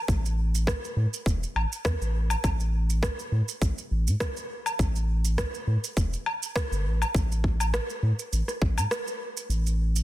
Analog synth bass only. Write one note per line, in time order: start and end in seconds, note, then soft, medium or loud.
0.08 0.73 A1 medium
0.96 1.06 A2 medium
1.26 1.45 E1 medium
1.56 1.65 A1 medium
1.85 1.95 E2 medium
2.01 2.35 A1 medium
2.44 3.09 A1 loud
3.32 3.42 A2 medium
3.61 3.71 A1 medium
3.91 4.09 A1 loud
4.07 4.15 A2 medium
4.79 5.44 A1 loud
5.67 5.77 A2 loud
5.97 6.16 E1 medium
6.72 6.87 G1 medium
6.85 7.04 A1 medium
7.14 7.79 A1 loud
8.03 8.12 A2 medium
8.33 8.42 A1 medium
8.61 8.79 A1 loud
8.78 8.86 A2 medium
9.49 10.03 A1 loud